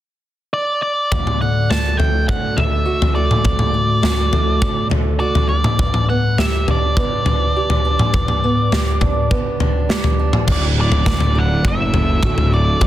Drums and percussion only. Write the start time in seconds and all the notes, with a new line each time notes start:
1.12 kick, floor tom
1.27 mid tom
1.71 snare, floor tom
2.00 floor tom
2.29 kick
2.58 floor tom
3.02 floor tom
3.31 mid tom
3.45 kick, floor tom
3.59 mid tom
4.03 snare, floor tom
4.33 floor tom
4.62 kick
4.91 floor tom
5.35 floor tom
5.64 mid tom
5.79 kick, floor tom
5.94 mid tom
6.38 snare, floor tom
6.68 floor tom
6.97 kick
7.26 floor tom
7.70 floor tom
7.99 mid tom
8.14 kick, floor tom
8.28 mid tom
8.72 snare, floor tom
9.01 kick, floor tom, mid tom
9.31 kick
9.60 floor tom
9.90 snare
10.04 floor tom
10.33 mid tom
10.48 kick, floor tom, crash
10.92 floor tom
11.06 kick, snare
11.20 floor tom
11.65 kick
11.94 floor tom
12.23 kick, mid tom
12.38 floor tom
12.81 kick, floor tom